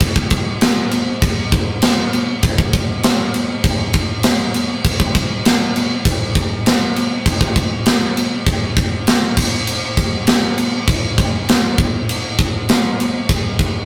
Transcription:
0.00 kick, crash
0.16 kick
0.30 kick, crash
0.61 snare, crash
0.91 crash
1.22 kick, crash
1.52 kick, crash
1.82 snare, crash
2.13 crash
2.43 kick, crash
2.58 kick
2.73 kick, crash
3.03 snare, crash
3.34 crash
3.64 kick, crash
3.93 kick, crash
4.23 snare, crash
4.54 crash
4.85 kick, crash
5.00 kick
5.15 kick, crash
5.45 snare, crash
5.76 crash
6.05 kick, crash
6.35 kick, crash
6.66 snare, crash
6.96 crash
7.26 kick, crash
7.41 kick
7.56 kick, crash
7.86 snare, crash
8.17 crash
8.47 kick, crash
8.77 kick, crash
9.07 snare, crash
9.37 kick, crash
9.67 crash
9.97 kick, crash
10.27 snare, crash
10.58 crash
10.88 kick, crash
11.18 kick, crash
11.49 snare, crash
11.78 kick, crash
12.09 crash
12.39 kick, crash
12.69 snare, crash
13.00 crash
13.29 kick, crash
13.59 kick, crash

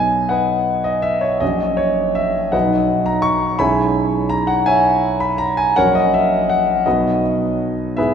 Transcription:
Already playing: B1 F#3 B3 F#4 B4 D#5 G#5
0.29 B4 D#5 F#5
0.84 D#5
1.02 E5
1.21 C#5
1.40 A#1 F#3 C#4 F#4 D#5
1.77 C#5
2.15 E5
2.52 B1 F#3 D#4 F#4 B4 D#5 F#5
3.06 A#5
3.22 C#6
3.59 B1 G#3 C#4 E4 E5 G#5 B5
4.29 A#5
4.47 F#5
4.66 C#5 E5 G#5
5.20 B5
5.38 A#5
5.57 G#5
5.76 A#1 F#3 C#4 F#4 A#4 C#5 F#5
5.95 D#5
6.14 E5
6.50 F#5
6.86 B1 F#3 B3 F#4 B4 D#5
7.97 G#2 G#3 B3 E4 G#4 B4 E5

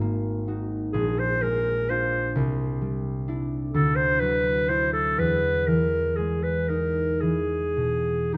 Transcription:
Already playing: G#1
0.01 A#3
0.48 D#4 F#4
0.93 A#1 G#4
1.19 C5
1.42 G#3 A#4
1.89 D4 F4 C5
2.36 C2
2.81 G3
3.28 D4 E4
3.73 D2 A4
3.96 C5
4.20 F#3 B4
4.69 D4 E4 C5
4.93 A4
5.18 E2 B4
5.67 E3 A#4
6.16 G#3 G#4
6.43 B4
6.68 D#4 A#4
7.21 E3 G#4
7.77 B2
8.34 D#2 D#4

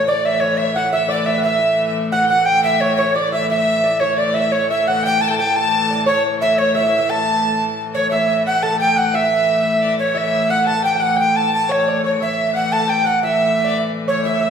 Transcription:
Already playing: A2 E3
0.07 D5
0.25 E5
0.40 C#5
0.57 E5
0.75 F#5
0.92 E5
1.08 D5
1.26 E5
1.38 F#5
1.43 E5
2.12 F#5
2.25 F#5 G5
2.30 F#5
2.45 G5
2.63 E5
2.81 C#5
2.96 C#5
3.15 D5
3.32 E5
3.49 E5
3.84 D5
4.00 A2 E3 C#5
4.17 D5
4.34 E5
4.52 C#5
4.70 E5
4.87 F#5
5.03 G5
5.21 A4 A5
5.28 A4 G5 A5
5.34 A5
5.38 G5
5.55 A4 A5
5.91 D4
6.06 C#5
6.41 E5
6.58 C#5
6.75 E5
6.86 E5
6.98 E5
7.09 A4 A5
7.94 C#5
8.11 A2 E3 E5
8.29 E5
8.45 F#5
8.63 A4 A5
8.78 G5
8.96 F#5
9.13 E5
9.81 D5
9.99 C#5
10.14 E5
10.49 F#5
10.66 A4 A5
10.79 G5 A5
10.84 G5
10.95 G5
10.99 F#5
11.16 G5
11.35 A5
11.53 A5
11.68 C#5
11.88 D5
12.04 C#5
12.20 A2 E3 E5
12.53 F#5
12.72 A4 A5
12.87 G5
13.04 F#5
13.23 E5
13.64 D5
14.08 C#5
14.25 E5
14.41 E5

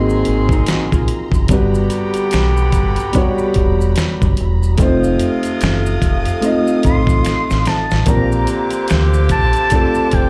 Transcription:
Already playing: G#1 D#3 F#3 A#3 C4 D#4 G#4 A#4 A#5 C6
0.10 maracas
0.25 G#1, closed hi-hat
0.49 C4 D#4, kick, maracas
0.66 D#4 F#4, finger snap, muted fingered electric bass stroke, snare, closed hi-hat, maracas
0.92 A#1 F4 G#4, kick, maracas
1.08 closed hi-hat
1.32 F#1, kick, maracas
1.48 G1 D3 G3 B3 D4 F#4 G4 B5, kick, closed hi-hat, maracas
1.53 B4
1.75 maracas
1.90 closed hi-hat, maracas
2.14 closed hi-hat, maracas
2.31 B1, finger snap, snare, closed hi-hat, maracas
2.57 maracas
2.72 G1, kick, closed hi-hat, maracas
2.96 closed hi-hat, maracas
3.12 G3 B3 D4 F#4, kick, closed hi-hat, maracas
3.17 C#5
3.38 maracas
3.54 E1, kick, closed hi-hat
3.81 maracas
3.96 finger snap, snare, closed hi-hat, maracas
4.22 F#1, kick, maracas
4.37 E1, closed hi-hat
4.63 maracas
4.77 F1 C3 A3 C4 D#4 F4 A4 F5 D#6, kick, closed hi-hat, maracas
4.82 C5
5.04 maracas
5.19 closed hi-hat, maracas
5.43 closed hi-hat, maracas
5.61 F#1, finger snap, snare, closed hi-hat, maracas
5.86 maracas
6.02 F1, kick, closed hi-hat, maracas
6.25 closed hi-hat, maracas
6.41 A3 C4 D#4 F4, closed hi-hat, maracas
6.46 D#5
6.67 maracas
6.83 A1 C6, kick, closed hi-hat, maracas
7.07 kick, maracas
7.25 finger snap, muted fingered electric bass stroke, snare, closed hi-hat, maracas
7.50 A1, snare, maracas
7.65 A5, snare, closed hi-hat, maracas
7.91 A1, snare, maracas
8.05 A#1 D3 A#3 C4 D4 F4 G4 C5 F5 A#5 D6, kick, closed hi-hat, maracas
8.10 A#4
8.32 maracas
8.47 closed hi-hat, maracas
8.70 closed hi-hat, maracas
8.88 finger snap, snare, closed hi-hat, maracas
8.92 D2
9.14 maracas
9.29 A#1 A5, kick, closed hi-hat, maracas
9.53 closed hi-hat, maracas
9.70 A3 C4 D4 F4, kick, closed hi-hat, maracas
9.75 A4
9.95 maracas
10.11 F1 G5, kick, closed hi-hat

